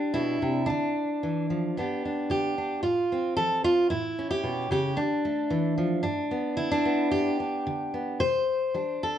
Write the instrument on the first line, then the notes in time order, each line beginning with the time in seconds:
steel-string acoustic guitar
Already playing: G3 D4
0.14 B2 E4
0.42 C3
0.66 D3 D4
1.23 E3
1.50 F3
1.77 G2 B3 D4 G4
2.05 D4
2.30 D3 G4
2.58 D4
2.83 A2 F4
3.12 C4
3.37 F3 A4
3.64 F4
3.90 A2 E4
4.19 C#4
4.31 G4
4.44 B2
4.71 C#3 G4
4.97 D3 D4
5.25 A3
5.50 E3
5.78 F3
6.03 G2 D4
6.31 B3
6.57 D3 E4
6.72 D4
6.85 B3
7.11 G2 G4
7.40 D4
7.67 D3
7.94 B3
8.20 C3 C5
8.74 G3 D4
9.03 A4